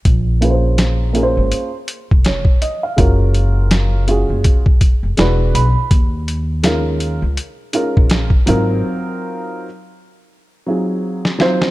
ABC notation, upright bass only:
X:1
M:4/4
L:1/16
Q:"Swing 16ths" 1/4=82
K:Bbm
V:1 name="Upright bass" clef=bass
B,,,6- B,,, A,,, z3 F,,,2 z3 | G,,,6- G,,, G,,, z3 F,,, =E,,,2 =B,,, z | E,,6- E,, D,, z3 B,,,2 z A,,,2 | z16 |]